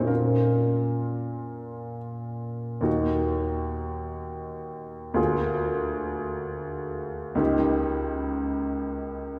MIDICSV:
0, 0, Header, 1, 2, 480
1, 0, Start_track
1, 0, Key_signature, -6, "minor"
1, 0, Tempo, 500000
1, 9015, End_track
2, 0, Start_track
2, 0, Title_t, "Upright piano"
2, 0, Program_c, 0, 0
2, 0, Control_c, 0, 64, 127
2, 0, Note_on_c, 0, 41, 34
2, 0, Note_on_c, 0, 46, 37
2, 0, Note_on_c, 0, 57, 28
2, 0, Note_on_c, 0, 63, 27
2, 0, Note_on_c, 0, 66, 34
2, 0, Note_on_c, 0, 72, 43
2, 0, Note_on_c, 0, 73, 42
2, 45, Note_on_c, 0, 58, 29
2, 60, Note_on_c, 0, 61, 27
2, 70, Note_on_c, 0, 65, 28
2, 71, Note_on_c, 0, 70, 44
2, 104, Control_c, 0, 64, 0
2, 107, Note_off_c, 0, 66, 0
2, 108, Note_off_c, 0, 72, 0
2, 109, Note_off_c, 0, 57, 0
2, 111, Note_off_c, 0, 73, 0
2, 112, Note_off_c, 0, 41, 0
2, 114, Note_off_c, 0, 63, 0
2, 313, Control_c, 0, 64, 127
2, 1879, Note_off_c, 0, 70, 0
2, 2659, Note_off_c, 0, 46, 0
2, 2686, Note_off_c, 0, 58, 0
2, 2693, Note_off_c, 0, 61, 0
2, 2695, Note_on_c, 0, 39, 45
2, 2698, Note_off_c, 0, 65, 0
2, 2709, Note_on_c, 0, 58, 38
2, 2716, Note_on_c, 0, 63, 37
2, 2723, Note_on_c, 0, 66, 35
2, 2762, Control_c, 0, 64, 0
2, 2910, Control_c, 0, 64, 127
2, 4907, Note_off_c, 0, 39, 0
2, 4914, Note_off_c, 0, 58, 0
2, 4917, Note_off_c, 0, 63, 0
2, 4921, Note_off_c, 0, 66, 0
2, 4934, Note_on_c, 0, 38, 51
2, 4937, Note_on_c, 0, 58, 38
2, 4949, Note_on_c, 0, 65, 42
2, 4958, Note_on_c, 0, 68, 39
2, 4986, Control_c, 0, 64, 0
2, 5130, Control_c, 0, 64, 127
2, 7040, Note_off_c, 0, 38, 0
2, 7041, Note_off_c, 0, 58, 0
2, 7047, Note_off_c, 0, 65, 0
2, 7051, Note_off_c, 0, 68, 0
2, 7057, Note_on_c, 0, 37, 50
2, 7067, Note_on_c, 0, 58, 43
2, 7079, Note_on_c, 0, 63, 48
2, 7085, Note_on_c, 0, 67, 42
2, 7112, Control_c, 0, 64, 0
2, 7251, Control_c, 0, 64, 127
2, 9015, Note_off_c, 0, 37, 0
2, 9015, Note_off_c, 0, 58, 0
2, 9015, Note_off_c, 0, 63, 0
2, 9015, Note_off_c, 0, 67, 0
2, 9015, End_track
0, 0, End_of_file